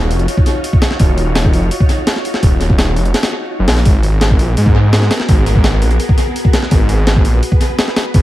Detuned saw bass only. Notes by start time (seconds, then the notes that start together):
Already playing: D#1
0.11 F1
1.00 D#1
1.54 F1
2.43 D#1
2.96 F1
3.59 F#1
3.68 A#1
3.85 G#1
4.39 A#1
4.57 G#2
5.29 G#1
5.82 A#1
6.71 G#1
7.25 A#1
8.14 G#1